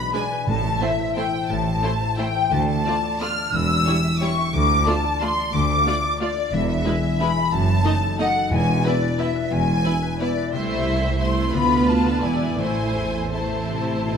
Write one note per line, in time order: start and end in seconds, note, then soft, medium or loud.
0.00 0.49 B2 medium
0.00 0.49 G#3 soft
0.00 0.49 D4 soft
0.00 0.31 B4 soft
0.00 0.14 B5 medium
0.00 0.15 B5 medium
0.14 0.22 G#3 soft
0.14 0.22 D4 soft
0.14 0.22 B4 soft
0.14 0.49 D5 soft
0.14 0.48 G#5 medium
0.14 0.47 G#5 medium
0.32 0.49 B4 soft
0.47 0.75 A1 medium
0.47 0.95 A2 medium
0.47 0.76 A2 medium
0.47 1.48 A2 medium
0.47 0.81 A5 medium
0.65 1.65 E3 soft
0.81 0.89 A3 medium
0.81 0.89 E4 medium
0.81 1.82 E4 soft
0.81 0.90 C5 soft
0.81 1.16 E5 medium
0.81 1.17 E5 medium
0.99 1.33 C5 soft
1.16 1.25 A3 soft
1.16 1.25 E4 soft
1.16 1.24 C5 soft
1.16 2.17 E5 soft
1.16 1.49 G5 medium
1.34 2.00 C5 soft
1.49 1.77 A1 medium
1.49 2.53 A2 medium
1.49 1.77 A2 medium
1.49 2.18 A5 medium
1.66 2.53 E3 soft
1.82 1.91 A3 soft
1.82 1.91 E4 soft
1.82 2.53 E4 soft
1.82 1.91 C5 medium
2.01 2.34 C5 soft
2.17 2.26 A3 soft
2.17 2.26 E4 soft
2.17 2.26 C5 soft
2.17 2.53 E5 soft
2.17 2.51 G5 medium
2.17 2.52 G5 medium
2.35 2.53 C5 soft
2.51 2.80 D2 medium
2.51 3.55 D3 medium
2.51 2.66 A5 medium
2.51 2.67 A5 medium
2.67 3.54 A3 soft
2.67 3.20 A5 medium
2.85 2.94 A3 medium
2.85 3.55 F4 soft
2.85 2.95 F4 soft
2.85 2.93 D5 medium
3.03 3.36 D5 soft
3.20 3.29 A3 soft
3.20 3.29 F4 medium
3.20 3.28 D5 soft
3.20 3.54 F5 soft
3.20 3.53 F6 medium
3.20 3.54 F6 medium
3.37 3.55 D5 soft
3.53 3.81 E1 medium
3.53 3.81 E2 medium
3.53 4.55 E3 medium
3.53 4.20 E6 medium
3.53 3.91 E6 medium
3.69 4.55 C#4 soft
3.86 3.95 G3 medium
3.86 3.95 E4 soft
3.86 4.55 G4 soft
3.86 3.94 C#5 medium
4.04 4.36 E5 soft
4.21 4.30 G3 soft
4.21 4.30 E4 soft
4.21 4.29 C#5 soft
4.21 4.55 G5 medium
4.21 4.54 C#6 medium
4.37 4.55 E5 soft
4.53 4.81 D2 medium
4.53 5.52 D3 medium
4.53 4.86 D6 medium
4.53 4.87 D6 medium
4.69 5.68 A3 soft
4.86 4.94 A3 medium
4.86 5.85 F4 soft
4.86 4.95 F4 medium
4.86 4.95 D5 soft
4.86 5.21 A5 medium
5.04 5.36 D5 soft
5.21 5.29 A3 soft
5.21 5.29 F4 soft
5.21 5.29 D5 soft
5.21 6.19 F5 soft
5.21 5.53 C6 medium
5.37 6.02 D5 soft
5.53 5.80 D2 medium
5.53 6.54 D3 medium
5.53 6.20 D6 medium
5.53 6.21 D6 medium
5.69 6.54 A3 soft
5.86 5.94 A3 medium
5.86 6.54 F4 soft
5.86 5.95 F4 medium
5.86 5.94 D5 medium
6.03 6.35 D5 soft
6.20 6.28 A3 soft
6.20 6.28 F4 medium
6.20 6.52 D5 medium
6.20 6.29 D5 medium
6.20 6.54 F5 medium
6.37 6.54 D5 soft
6.52 6.80 E1 medium
6.52 6.80 E2 medium
6.52 7.54 E3 medium
6.52 6.67 E5 medium
6.52 6.68 E5 medium
6.69 7.54 B3 soft
6.69 7.19 E5 medium
6.85 6.94 G#3 medium
6.85 6.94 E4 soft
6.85 7.53 G#4 soft
6.85 6.94 B4 medium
7.03 7.36 E5 soft
7.20 7.28 G#3 medium
7.20 7.28 E4 medium
7.20 7.28 B4 soft
7.20 7.54 G#5 medium
7.20 7.52 B5 medium
7.37 7.54 E5 medium
7.52 7.79 F#1 medium
7.52 7.79 F#2 medium
7.52 8.53 F#2 medium
7.52 8.19 A5 medium
7.68 8.53 F#3 soft
7.85 7.93 A3 medium
7.85 8.53 D#4 soft
7.85 7.93 D#4 medium
7.85 7.93 D#5 medium
8.02 8.34 A4 soft
8.19 8.27 A3 medium
8.19 8.27 D#4 soft
8.19 8.53 D#5 soft
8.19 8.27 D#5 medium
8.19 8.51 F#5 medium
8.35 8.53 A4 soft
8.51 8.79 E1 medium
8.51 8.98 E2 medium
8.51 8.79 E2 medium
8.51 9.50 E2 medium
8.51 8.85 G#5 medium
8.68 9.66 B2 soft
8.84 8.93 B3 medium
8.84 9.84 E4 soft
8.84 8.93 E4 medium
8.84 8.92 B4 medium
8.84 9.19 D5 medium
8.84 9.20 D5 medium
9.02 9.34 B4 soft
9.19 9.27 B3 soft
9.19 9.27 E4 medium
9.19 9.27 B4 soft
9.19 10.19 E5 soft
9.19 9.52 E5 medium
9.36 10.01 B4 soft
9.51 9.79 E1 medium
9.51 10.54 E2 medium
9.51 9.79 E2 medium
9.51 9.98 G#5 medium
9.51 10.21 G#5 medium
9.68 10.55 B2 soft
9.84 9.93 B3 medium
9.84 9.93 E4 soft
9.84 10.85 E4 soft
9.84 9.92 B4 medium
10.02 10.36 B4 soft
10.20 10.29 B3 soft
10.20 10.29 E4 medium
10.20 10.28 B4 medium
10.20 10.53 D5 medium
10.20 11.20 E5 soft
10.37 10.55 B4 soft
10.53 11.49 C2 medium
10.53 11.54 C3 medium
10.53 11.17 A3 soft
10.53 11.17 E4 soft
10.53 11.17 C5 medium
10.53 10.69 E5 medium
10.69 11.55 A3 soft
10.69 11.20 E5 medium
10.86 11.54 E4 soft
11.03 11.36 C5 soft
11.21 11.53 A3 medium
11.21 11.53 E4 soft
11.21 11.53 C5 soft
11.21 11.55 E5 soft
11.21 11.53 C6 medium
11.37 11.54 C5 soft
11.53 12.23 D2 medium
11.53 12.23 D2 soft
11.53 12.24 D3 medium
11.53 12.21 B3 soft
11.53 12.23 F4 soft
11.53 12.23 B4 soft
11.53 11.87 B5 medium
11.70 12.60 D4 soft
11.87 12.24 F4 soft
11.87 12.23 A5 medium
12.05 12.40 B4 soft
12.22 12.58 E1 soft
12.22 12.58 E2 soft
12.22 12.60 E3 soft
12.22 12.57 B3 soft
12.22 12.57 E4 soft
12.22 12.58 D5 soft
12.22 12.57 G#5 soft
12.22 12.58 G#5 medium
12.41 12.94 E4 soft
12.41 12.60 B4 soft
12.58 14.17 A1 soft
12.58 13.68 A2 soft
12.58 13.10 A2 medium
12.58 12.90 A2 soft
12.58 13.32 A3 soft
12.58 13.32 E4 soft
12.58 13.32 C5 soft
12.58 13.32 G#5 medium
12.76 13.86 E3 soft
12.95 13.13 E2 soft
12.95 14.04 E4 soft
13.14 13.68 E2 soft
13.14 13.51 C5 soft
13.33 14.17 A3 soft
13.33 14.17 E4 soft
13.33 14.17 C5 soft
13.33 14.17 E5 soft
13.33 14.17 A5 soft
13.33 14.17 A5 medium
13.52 14.17 C5 soft
13.69 14.17 A2 soft
13.69 14.05 C3 soft
13.87 14.17 E3 soft
14.05 14.17 B2 soft
14.05 14.17 E4 soft